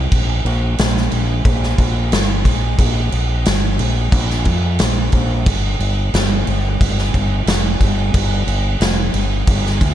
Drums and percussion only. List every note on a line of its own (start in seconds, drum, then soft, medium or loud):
0.12 kick loud
0.12 crash medium
0.46 crash medium
0.78 snare loud
0.78 crash medium
0.97 snare soft
1.11 crash medium
1.45 kick loud
1.45 crash medium
1.63 snare soft
1.78 kick medium
1.78 crash medium
2.12 snare loud
2.12 crash medium
2.45 kick medium
2.45 crash medium
2.79 kick loud
2.79 crash medium
3.12 crash medium
3.46 snare loud
3.46 crash medium
3.79 crash medium
4.12 kick loud
4.12 crash medium
4.30 snare soft
4.45 kick medium
4.45 crash medium
4.79 snare loud
4.79 crash medium
5.12 kick medium
5.12 crash medium
5.46 kick loud
5.46 crash medium
5.80 crash medium
6.14 snare loud
6.14 crash medium
6.47 crash medium
6.81 kick loud
6.81 crash medium
6.99 snare soft
7.14 kick medium
7.14 crash medium
7.47 snare loud
7.47 crash medium
7.81 kick medium
7.81 crash medium
8.14 kick loud
8.14 crash medium
8.48 crash medium
8.81 snare loud
8.81 crash medium
9.14 crash medium
9.47 kick loud
9.47 crash medium
9.66 snare soft
9.81 kick medium
9.81 crash medium